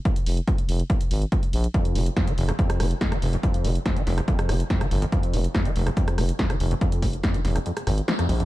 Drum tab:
HH |xxoxxxoxxxoxxxox|xxoxxxoxxxoxxxox|xxoxxxoxxxoxxxox|xxoxxxoxxxoxxxox|
SD |----------------|----o--r-rr-or--|----o-or-rr-or--|----o--r-rr-or--|
BD |o---o---o---o---|o---o---o---o---|o---o---o---o---|o---o---o---o---|

HH |xxoxxxoxxxoxxxox|
SD |----o-or-rr-or--|
BD |o-o-o-----------|